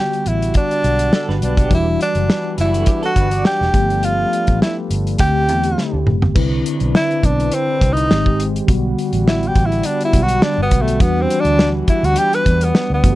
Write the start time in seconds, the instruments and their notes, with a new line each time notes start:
Already playing: tine electric piano D3 G3 B3 F#4, french horn section G3 B3 F#4
0.00 tenor saxophone G4
0.13 closed hi-hat
0.26 fingered electric bass A1, tenor saxophone E4, closed hi-hat
0.42 closed hi-hat
0.54 tenor saxophone D4, kick, closed hi-hat
0.71 closed hi-hat
0.84 fingered electric bass B1, closed hi-hat
0.99 closed hi-hat
1.13 clean electric guitar A4, snare
1.29 fingered electric bass G1, clean electric guitar D4 B4, snare
1.42 fingered electric bass B1, tenor saxophone D4, closed hi-hat
1.57 clean electric guitar B3 G4, kick, closed hi-hat
1.70 fingered electric bass E1, tine electric piano E3 G3 D4 F#4, french horn section E3 G3 D4 F#4, kick, closed hi-hat
1.74 tenor saxophone E4
2.01 tenor saxophone D4, closed hi-hat
2.15 fingered electric bass F#1, closed hi-hat
2.30 snare
2.58 fingered electric bass F#1, clean electric guitar G3 E4, tenor saxophone E4, closed hi-hat
2.73 clean electric guitar A3 F#4, closed hi-hat
2.86 clean electric guitar B3 G4, kick, closed hi-hat
3.03 tenor saxophone F#4, clean electric guitar A4, closed hi-hat
3.16 fingered electric bass G1, clean electric guitar D4 B4, kick, closed hi-hat
3.31 clean electric guitar F#4 D5, closed hi-hat
3.45 tenor saxophone G4, snare
3.61 fingered electric bass E1, snare
3.73 fingered electric bass G1, tine electric piano F3 A3 B3 G4, french horn section G3 F4 A4 B4, kick, closed hi-hat
3.90 closed hi-hat
4.03 tenor saxophone F4, closed hi-hat
4.33 closed hi-hat
4.47 fingered electric bass A1, kick, closed hi-hat
4.62 tenor saxophone E4, snare
4.90 fingered electric bass G1, closed hi-hat
5.07 closed hi-hat
5.18 fingered electric bass D2, tine electric piano D3 A3 C4, french horn section D3 A3 C4 E4 G4, tenor saxophone G4, kick, closed hi-hat
5.49 fingered electric bass E2, closed hi-hat
5.64 closed hi-hat
5.78 snare
5.94 fingered electric bass D2
6.06 fingered electric bass F#1, mid tom
6.22 fingered electric bass G1, floor tom
6.35 fingered electric bass C2, french horn section C3 G3 D4 E4 B4, tine electric piano D3 C4 E4 B4, kick, crash
6.66 closed hi-hat
6.80 fingered electric bass B1, closed hi-hat
6.95 tenor saxophone E4, snare
7.11 closed hi-hat
7.23 fingered electric bass B1, tenor saxophone D4, kick, closed hi-hat
7.40 closed hi-hat
7.52 tenor saxophone C4, closed hi-hat
7.81 fingered electric bass C2, kick, closed hi-hat
7.93 tenor saxophone D#4, closed hi-hat
8.09 fingered electric bass G#1, tine electric piano D#3 G#3 C4 G4, french horn section G#3 C4 G4, snare
8.26 kick
8.40 closed hi-hat
8.56 closed hi-hat
8.67 fingered electric bass B1, tine electric piano D3 G3 B3 F#4, french horn section G3 B3 F#4, kick, closed hi-hat
8.98 closed hi-hat
9.13 fingered electric bass A1, closed hi-hat
9.28 tenor saxophone E4, snare
9.43 closed hi-hat
9.48 tenor saxophone G4
9.55 fingered electric bass A1, kick, closed hi-hat
9.66 tenor saxophone E4
9.72 closed hi-hat
9.83 tenor saxophone D4, closed hi-hat
10.01 closed hi-hat
10.05 tenor saxophone E4
10.13 fingered electric bass B1, kick, closed hi-hat
10.23 tenor saxophone F#4
10.28 closed hi-hat
10.41 tine electric piano D3 G3 B3 F#4, tenor saxophone D4, snare
10.58 fingered electric bass G1
10.62 tenor saxophone B3
10.71 fingered electric bass B1, kick, closed hi-hat
10.82 tenor saxophone A3
10.88 closed hi-hat
11.00 fingered electric bass E2, tine electric piano E3 G3 D4 F#4, french horn section E3 G3 B3 D4 F#4, tenor saxophone B3, kick, closed hi-hat
11.22 tenor saxophone C4
11.30 closed hi-hat
11.41 tenor saxophone D4
11.45 fingered electric bass D2, closed hi-hat
11.59 snare
11.88 tenor saxophone E4, muted fingered electric bass stroke, kick, closed hi-hat
12.03 fingered electric bass D2, tenor saxophone F#4, closed hi-hat
12.16 tenor saxophone G4, closed hi-hat
12.33 tenor saxophone B4, closed hi-hat
12.46 fingered electric bass E2, kick, closed hi-hat
12.61 tenor saxophone B3, closed hi-hat
12.75 snare
12.90 fingered electric bass D2, tenor saxophone B3
13.03 fingered electric bass G1, tine electric piano F3 A3 B3 F#4, french horn section G3 F4 A4 B4, kick, closed hi-hat
13.11 tine electric piano G4